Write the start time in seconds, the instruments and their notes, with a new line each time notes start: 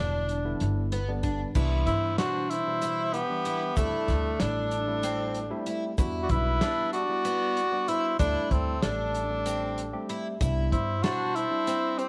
Already playing: upright bass E1, tine electric piano D3 G3 B3 E4, twelve-string acoustic guitar D4, tenor saxophone D4
0.29 closed hi-hat
0.45 tine electric piano D3 G3 B3 E4
0.60 upright bass G1, closed hi-hat
0.92 twelve-string acoustic guitar B3, closed hi-hat
1.08 tine electric piano D3 G3 B3 D4
1.23 twelve-string acoustic guitar D4, kick, closed hi-hat
1.55 upright bass C2, tine electric piano E3 G3 B3 D4, twelve-string acoustic guitar E4, kick, crash, shaker
1.87 upright bass G2, tenor saxophone E4, flugelhorn C5, kick, closed hi-hat, shaker
2.18 tine electric piano B2 E3 G3 D4, twelve-string acoustic guitar D4, tenor saxophone F#4, flugelhorn C5, snare, closed hi-hat
2.50 tenor saxophone E4, flugelhorn C5, closed hi-hat
2.67 tine electric piano B2 E3 G3 E4
2.82 twelve-string acoustic guitar E4, closed hi-hat, shaker
3.14 tenor saxophone B3, flugelhorn G4, closed hi-hat
3.30 tine electric piano E3 G3 B3 D4
3.45 twelve-string acoustic guitar E4, closed hi-hat, shaker
3.77 upright bass D2, tine electric piano G3 A3 C4 E4, tenor saxophone A3, flugelhorn D4, twelve-string acoustic guitar E4, kick, closed hi-hat, shaker
4.08 upright bass D2, kick, snare, closed hi-hat, shaker
4.40 upright bass A1, tine electric piano G3 A3 C4 E4, twelve-string acoustic guitar D4, tenor saxophone D4, flugelhorn A4, snare, closed hi-hat
4.71 closed hi-hat
4.87 tine electric piano G3 A3 C4 E4
5.03 twelve-string acoustic guitar C4, closed hi-hat, shaker
5.35 closed hi-hat
5.51 tine electric piano G3 A3 C4 E4
5.66 twelve-string acoustic guitar E4, closed hi-hat, shaker
5.98 upright bass E2, tine electric piano G3 B3 D4 F#4, twelve-string acoustic guitar E4, kick, closed hi-hat, shaker
6.23 tenor saxophone F#4, flugelhorn D5
6.29 upright bass B1, tenor saxophone E4, flugelhorn B4, kick, closed hi-hat, shaker
6.61 tine electric piano G3 B3 D4 G4, twelve-string acoustic guitar D4, snare, closed hi-hat
6.93 tenor saxophone F#4, flugelhorn D5, closed hi-hat
7.09 tine electric piano G3 B3 D4 E4
7.25 twelve-string acoustic guitar B3, closed hi-hat, shaker
7.57 closed hi-hat
7.72 tine electric piano G3 B3 D4 F#4
7.88 twelve-string acoustic guitar E4, tenor saxophone E4, flugelhorn C5, closed hi-hat, shaker
8.19 upright bass D2, tine electric piano G3 A3 C4 E4, tenor saxophone D4, twelve-string acoustic guitar E4, flugelhorn A4, kick, closed hi-hat, shaker
8.51 upright bass D2, tenor saxophone C4, flugelhorn A4, kick, closed hi-hat
8.82 upright bass A1, tine electric piano G3 A3 C4 G4, tenor saxophone D4, twelve-string acoustic guitar D4, flugelhorn A4, snare, closed hi-hat, shaker
9.15 closed hi-hat, shaker
9.30 tine electric piano G3 A3 C4 G4
9.46 twelve-string acoustic guitar C4, closed hi-hat, shaker
9.78 closed hi-hat, shaker
9.93 tine electric piano G3 A3 C4 G4
10.09 twelve-string acoustic guitar E4, closed hi-hat
10.41 upright bass C2, tine electric piano G3 B3 D4 E4, twelve-string acoustic guitar E4, kick, closed hi-hat, shaker
10.72 upright bass G2, tenor saxophone E4, flugelhorn C5, kick, closed hi-hat, shaker
11.03 tine electric piano B2 G3 D4 E4, twelve-string acoustic guitar D4, tenor saxophone F#4, flugelhorn C5, snare, closed hi-hat
11.35 tenor saxophone E4, flugelhorn C5, closed hi-hat
11.51 tine electric piano G3 C4 D4 E4
11.67 twelve-string acoustic guitar C4, closed hi-hat, shaker
11.98 tenor saxophone C4, flugelhorn G4, closed hi-hat